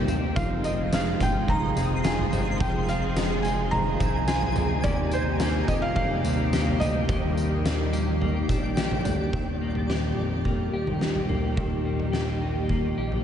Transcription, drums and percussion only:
0.08 floor tom, tambourine
0.36 kick, floor tom, tambourine
0.64 tambourine
0.92 snare, tambourine
1.21 kick, tambourine
1.48 kick, floor tom
1.77 tambourine
2.04 snare, tambourine
2.19 floor tom
2.33 floor tom, tambourine
2.60 kick, floor tom, tambourine
2.89 tambourine
3.16 snare, tambourine
3.45 tambourine
3.72 floor tom
4.00 kick, tambourine
4.28 snare, tambourine
4.42 floor tom
4.56 floor tom, tambourine
4.84 kick, floor tom, tambourine
5.11 tambourine
5.40 snare, tambourine
5.68 kick, tambourine
5.96 kick, floor tom
6.25 tambourine
6.53 snare, tambourine
6.67 floor tom
6.81 floor tom, tambourine
7.09 kick, floor tom, tambourine
7.37 tambourine
7.65 snare, tambourine
7.93 tambourine
8.22 floor tom
8.49 kick, tambourine
8.77 snare, tambourine
8.91 floor tom
9.05 floor tom, tambourine
9.33 kick, floor tom
9.75 floor tom
9.90 snare
10.45 kick
10.87 floor tom
11.01 snare
11.16 floor tom
11.29 floor tom
11.57 kick, floor tom
12.00 floor tom
12.13 snare
12.69 kick
13.12 floor tom

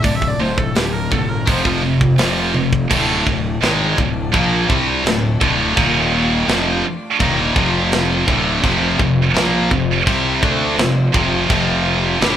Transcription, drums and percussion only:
0.04 kick, open hi-hat
0.22 kick
0.58 kick
0.75 snare, open hi-hat
1.12 kick
1.47 kick, open hi-hat
1.65 kick
2.01 kick
2.18 snare, open hi-hat
2.54 high tom
2.73 kick
2.91 kick, crash, china
3.27 kick
3.62 snare, china
3.98 kick
4.34 kick, china
4.70 kick
5.06 snare, china
5.41 kick
5.77 kick, china
6.48 snare, china
7.20 kick, china
7.56 kick
7.92 snare, china
8.28 kick
8.64 kick, china
8.99 kick
9.36 snare, china
9.71 kick
10.07 kick, china
10.43 kick
10.78 snare, china
11.14 kick
11.50 kick, china
12.21 snare, china

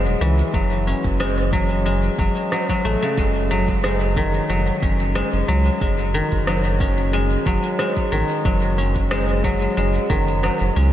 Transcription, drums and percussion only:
0.07 closed hi-hat
0.22 shaker
0.39 closed hi-hat, shaker
0.54 kick, closed hi-hat, shaker
0.88 shaker
1.04 kick, closed hi-hat, shaker
1.20 cross-stick, closed hi-hat, shaker
1.38 cross-stick, closed hi-hat
1.53 kick, shaker
1.71 closed hi-hat, shaker
1.86 closed hi-hat, shaker
2.04 closed hi-hat, shaker
2.19 kick, shaker
2.37 closed hi-hat, shaker
2.52 cross-stick, closed hi-hat, shaker
2.69 kick, closed hi-hat, shaker
2.85 shaker
3.03 closed hi-hat, shaker
3.18 kick, closed hi-hat, shaker
3.51 shaker
3.68 kick, closed hi-hat, shaker
3.84 cross-stick, closed hi-hat, shaker
4.02 closed hi-hat
4.17 kick, shaker
4.34 closed hi-hat, shaker
4.50 closed hi-hat, shaker
4.67 closed hi-hat, shaker
4.83 kick, shaker
5.00 closed hi-hat, shaker
5.16 cross-stick, closed hi-hat, shaker
5.34 closed hi-hat
5.49 shaker
5.66 closed hi-hat, shaker
5.81 kick, closed hi-hat, shaker
6.15 shaker
6.32 kick, closed hi-hat, shaker
6.47 cross-stick, closed hi-hat, shaker
6.65 cross-stick, closed hi-hat
6.80 kick, shaker
6.98 closed hi-hat, shaker
7.13 closed hi-hat, shaker
7.31 closed hi-hat, shaker
7.46 kick, shaker
7.64 closed hi-hat, shaker
7.79 cross-stick, closed hi-hat, shaker
7.97 kick, closed hi-hat, shaker
8.12 shaker
8.30 closed hi-hat, shaker
8.45 kick, closed hi-hat, shaker
8.79 shaker
8.96 kick, closed hi-hat, shaker
9.11 cross-stick, closed hi-hat, shaker
9.29 closed hi-hat
9.44 kick, shaker
9.62 closed hi-hat, shaker
9.78 closed hi-hat, shaker
9.95 closed hi-hat, shaker
10.10 kick, shaker
10.28 closed hi-hat, shaker
10.44 cross-stick, closed hi-hat, shaker
10.61 closed hi-hat
10.77 shaker

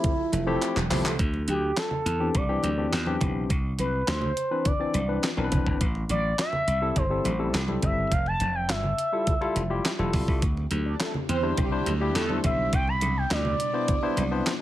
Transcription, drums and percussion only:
0.04 kick, closed hi-hat, muted conga, low conga
0.32 closed hi-hat, high conga
0.62 clap, closed hi-hat
0.76 clap, high conga
0.90 clap, open hi-hat, low conga
1.06 clap
1.19 kick, closed hi-hat, muted conga
1.34 muted conga
1.48 closed hi-hat, high conga
1.77 snare, clap, closed hi-hat, muted conga
1.91 low conga
2.06 closed hi-hat
2.35 kick, closed hi-hat, low conga
2.63 closed hi-hat, high conga
2.93 snare, clap, closed hi-hat
3.06 muted conga, high conga
3.21 kick, closed hi-hat, low conga
3.50 kick, closed hi-hat, muted conga
3.79 closed hi-hat, high conga
4.07 snare, clap, closed hi-hat, muted conga
4.21 muted conga, low conga
4.37 closed hi-hat
4.65 kick, closed hi-hat, low conga
4.94 closed hi-hat, high conga
5.23 snare, clap, closed hi-hat, muted conga
5.37 high conga
5.52 kick, closed hi-hat, low conga
5.67 kick
5.81 kick, closed hi-hat
5.95 muted conga
6.09 closed hi-hat, high conga
6.38 snare, clap, closed hi-hat, muted conga
6.53 muted conga, low conga
6.68 closed hi-hat
6.96 kick, closed hi-hat, low conga
7.25 closed hi-hat, high conga
7.54 snare, clap, closed hi-hat, muted conga
7.68 muted conga, high conga
7.83 kick, closed hi-hat, low conga
8.12 kick, closed hi-hat
8.26 muted conga
8.40 closed hi-hat, high conga
8.69 snare, clap, closed hi-hat, muted conga
8.84 low conga
8.98 closed hi-hat
9.27 kick, closed hi-hat, muted conga, low conga
9.42 muted conga
9.56 closed hi-hat, high conga
9.85 snare, clap, closed hi-hat, muted conga
9.99 high conga
10.13 kick, open hi-hat, low conga
10.28 kick
10.42 kick, closed hi-hat
10.57 muted conga
10.71 closed hi-hat, high conga
11.00 snare, clap, closed hi-hat, muted conga
11.14 low conga
11.29 closed hi-hat
11.57 kick, closed hi-hat, muted conga, low conga
11.86 closed hi-hat, high conga
12.15 snare, clap, closed hi-hat
12.30 high conga
12.44 kick, closed hi-hat, low conga
12.73 kick, closed hi-hat, muted conga
12.88 muted conga
13.01 closed hi-hat, high conga
13.31 snare, clap, closed hi-hat
13.45 muted conga, low conga
13.60 closed hi-hat
13.88 kick, closed hi-hat, low conga
14.17 closed hi-hat, high conga
14.46 snare, clap, closed hi-hat, muted conga

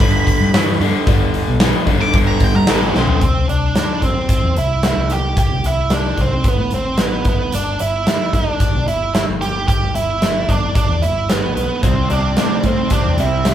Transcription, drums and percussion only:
0.00 kick, open hi-hat
0.27 kick, open hi-hat
0.54 snare, open hi-hat
0.81 open hi-hat
1.07 kick, open hi-hat
1.34 open hi-hat
1.60 snare, open hi-hat
1.87 kick, open hi-hat
2.01 snare
2.13 kick, open hi-hat
2.40 kick, open hi-hat
2.67 snare, open hi-hat
2.95 snare
3.07 floor tom
3.21 kick, closed hi-hat
3.49 closed hi-hat
3.75 snare, closed hi-hat
4.02 kick, closed hi-hat
4.29 kick, closed hi-hat
4.56 closed hi-hat
4.83 snare, closed hi-hat
5.10 closed hi-hat
5.37 kick, closed hi-hat
5.64 closed hi-hat
5.90 snare, closed hi-hat
6.17 kick, closed hi-hat
6.44 kick, closed hi-hat
6.71 closed hi-hat
6.97 snare, closed hi-hat
7.25 kick, closed hi-hat
7.52 closed hi-hat
7.79 closed hi-hat
8.07 snare, closed hi-hat
8.33 kick, closed hi-hat
8.60 kick, closed hi-hat
8.88 closed hi-hat
9.14 snare, closed hi-hat
9.42 closed hi-hat
9.68 kick, closed hi-hat
9.95 closed hi-hat
10.22 snare, closed hi-hat
10.49 kick, closed hi-hat
10.75 kick, closed hi-hat
11.03 closed hi-hat
11.29 snare, closed hi-hat
11.57 closed hi-hat
11.83 kick, closed hi-hat
12.10 closed hi-hat
12.37 snare, closed hi-hat
12.63 kick, closed hi-hat
12.90 kick, closed hi-hat
13.18 closed hi-hat
13.45 snare, closed hi-hat

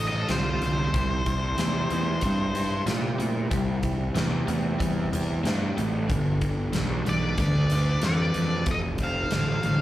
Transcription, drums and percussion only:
0.29 snare, closed hi-hat
0.62 closed hi-hat
0.94 kick, closed hi-hat
1.26 kick, closed hi-hat
1.58 snare, closed hi-hat
1.90 closed hi-hat
2.21 kick, closed hi-hat
2.55 closed hi-hat
2.87 snare, closed hi-hat
3.20 closed hi-hat
3.51 kick, closed hi-hat
3.83 kick, closed hi-hat
4.16 snare, closed hi-hat
4.48 closed hi-hat
4.80 kick, closed hi-hat
5.13 closed hi-hat
5.45 snare, closed hi-hat
5.78 closed hi-hat
6.10 kick, closed hi-hat
6.41 kick, closed hi-hat
6.73 snare, closed hi-hat
7.06 closed hi-hat
7.38 kick, closed hi-hat
7.70 closed hi-hat
8.02 snare, closed hi-hat
8.34 closed hi-hat
8.66 kick, closed hi-hat
8.98 kick, closed hi-hat
9.31 snare, closed hi-hat
9.63 closed hi-hat

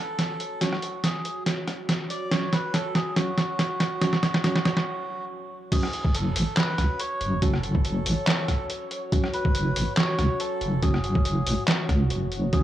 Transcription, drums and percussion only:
0.19 snare, closed hi-hat
0.40 closed hi-hat
0.61 snare, closed hi-hat
0.73 cross-stick
0.82 closed hi-hat
1.04 snare, closed hi-hat
1.25 closed hi-hat
1.46 snare, closed hi-hat
1.68 cross-stick, closed hi-hat
1.89 snare, closed hi-hat
2.10 closed hi-hat
2.31 snare, closed hi-hat
2.53 snare, closed hi-hat
2.74 snare, closed hi-hat
2.95 snare, closed hi-hat
3.16 snare, closed hi-hat
3.38 snare, closed hi-hat
3.59 snare, closed hi-hat
3.80 snare, closed hi-hat
4.02 snare, closed hi-hat
4.13 snare
4.23 snare, closed hi-hat
4.34 snare
4.44 snare, closed hi-hat
4.56 snare
4.65 snare, closed hi-hat
4.77 snare
5.72 kick, closed hi-hat, crash
5.83 cross-stick
5.93 closed hi-hat
6.05 kick
6.15 closed hi-hat
6.36 open hi-hat
6.57 snare, clap, closed hi-hat
6.78 cross-stick, closed hi-hat
7.00 closed hi-hat
7.21 closed hi-hat
7.42 kick, closed hi-hat
7.54 cross-stick
7.63 closed hi-hat
7.75 kick
7.85 closed hi-hat
8.06 open hi-hat
8.27 snare, clap, closed hi-hat
8.48 kick, cross-stick, closed hi-hat
8.70 closed hi-hat
8.91 closed hi-hat
9.12 kick, closed hi-hat
9.24 cross-stick
9.34 closed hi-hat
9.45 kick
9.55 closed hi-hat
9.76 open hi-hat
9.97 snare, clap, closed hi-hat
10.19 cross-stick, closed hi-hat
10.40 closed hi-hat
10.61 closed hi-hat
10.83 kick, closed hi-hat
10.94 cross-stick
11.04 closed hi-hat
11.15 kick
11.25 closed hi-hat
11.47 open hi-hat
11.68 snare, clap, closed hi-hat
11.89 kick, cross-stick, closed hi-hat
12.10 closed hi-hat
12.32 closed hi-hat
12.53 kick, closed hi-hat

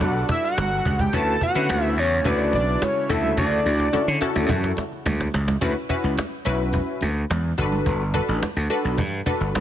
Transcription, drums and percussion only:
0.00 cajon bass, muted conga
0.29 cajon bass, muted conga
0.57 cajon slap, high conga
0.85 cajon bass
0.99 cajon bass, high conga
1.13 cajon bass, muted conga
1.28 cajon slap
1.41 cajon bass
1.69 cajon slap, high conga
1.97 cajon slap, muted conga
2.24 cajon bass, muted conga
2.53 cajon slap, muted conga
2.82 cajon slap, high conga
3.10 cajon bass
3.24 high conga
3.37 cajon bass, cajon slap, muted conga
3.52 cajon slap
3.66 cajon slap
3.80 cajon slap
3.93 cajon slap, high conga
4.22 cajon slap
4.36 cajon slap
4.49 cajon bass, muted conga, low conga
4.64 cajon slap
4.77 cajon slap, muted conga
4.92 cajon slap
5.05 cajon slap, high conga
5.21 cajon slap
5.34 cajon slap
5.48 cajon slap, high conga
5.61 cajon bass, muted conga
5.76 cajon slap
5.90 cajon bass
6.18 cajon slap, high conga
6.45 cajon slap, muted conga
6.73 cajon bass, muted conga
7.01 cajon slap, muted conga
7.30 cajon slap, high conga
7.58 cajon bass
7.72 high conga
7.86 cajon bass, muted conga
8.01 cajon slap
8.14 cajon bass
8.42 cajon slap, high conga
8.70 cajon slap, muted conga
8.98 cajon bass, muted conga, low conga
9.26 cajon bass, muted conga
9.55 cajon slap, high conga

